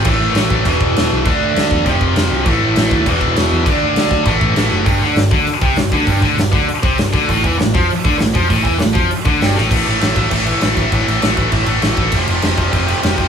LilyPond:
<<
  \new Staff \with { instrumentName = "Distorted electric guitar" } { \clef bass \time 4/4 \key a \minor \tempo 4 = 199 <a, e a>2 <e, b, e>2 | <d a d'>2 <f, c f>2 | <a, e a>2 <e, b, e>2 | <d a d'>2 <a, e a>2 |
g,8 d8 g,8 d8 r8 c8 g,8 d8 | g,8 d8 g,8 d8 r8 c8 g,8 d8 | a,8 e8 a,8 f8 r8 d8 a,8 f8 | a,8 e8 a,8 f8 r8 d8 g,8 a,8 |
<a, e a>8 <a, e a>8 <a, e a>8 <a, e a>8 <a, e a>8 <a, e a>8 <a, e a>8 <a, e a>8 | <a, e a>8 <a, e a>8 <a, e a>8 <a, e a>8 <a, e a>8 <a, e a>8 <a, e a>8 <a, e a>8 | <f, c f>8 <f, c f>8 <f, c f>8 <f, c f>8 <f, c f>8 <f, c f>8 <f, c f>8 <f, c f>8 | }
  \new Staff \with { instrumentName = "Picked electric bass" } { \clef bass \time 4/4 \key a \minor a,,8 a,,8 a,,8 a,,8 e,,8 e,,8 e,,8 b,,8 | d,8 d,8 d,8 e,8 f,,8 f,,8 f,,8 c,8 | a,,8 a,,8 a,,8 dis,8 e,,8 e,,8 e,,8 e,8 | d,8 d,8 d,8 d,8 a,,8 a,,8 a,,8 fis,,8 |
g,,8 d,8 g,,8 d,8 r8 c,8 g,,8 d,8 | g,,8 d,8 g,,8 d,8 r8 c,8 g,,8 d,8 | a,,8 e,8 a,,8 f,8 r8 d,8 a,,8 f,8 | a,,8 e,8 a,,8 f,8 r8 d,8 g,,8 a,,8 |
a,,8 a,,8 a,,8 a,,8 a,,4 a,,8 a,,8 | a,,8 a,,8 a,,8 a,,8 a,,8 a,,8 a,,8 a,,8 | f,,8 f,,8 f,,8 f,,8 f,,4 f,,8 f,,8 | }
  \new DrumStaff \with { instrumentName = "Drums" } \drummode { \time 4/4 <cymc bd>4 <cymc sn>8 bd8 <cymc bd>8 bd8 <cymc sn>4 | <cymc bd>4 <cymc sn>8 bd8 <cymc bd>8 bd8 <cymc sn>4 | <cymc bd>4 <cymc sn>8 bd8 <cymc bd>8 bd8 <cymc sn>4 | <cymc bd>4 <cymc sn>8 bd8 <cymc bd>8 bd8 <cymc sn>4 |
<hho bd>4 <hho sn>8 bd8 hho8 bd8 <hho sn>8 bd8 | <hho bd>8 bd8 <hho sn>8 bd8 hho8 bd8 <hho sn>8 bd8 | <hho bd>8 bd8 <hho sn>8 bd8 hho8 bd8 <hho sn>8 bd8 | <hho bd>8 bd8 <hho sn>8 bd8 hho8 bd8 <hho sn>8 sn8 |
<cymc bd>8 cymc8 <cymc sn>8 <cymc bd>8 <cymc bd>8 cymc8 <cymc sn>8 <cymc bd>8 | <cymc bd>8 cymc8 <cymc sn>8 <cymc bd>8 <cymc bd>8 cymc8 <cymc sn>8 <cymc bd>8 | <cymc bd>8 cymc8 <cymc sn>8 <cymc bd>8 <cymc bd>8 cymc8 <cymc sn>8 <cymc bd>8 | }
>>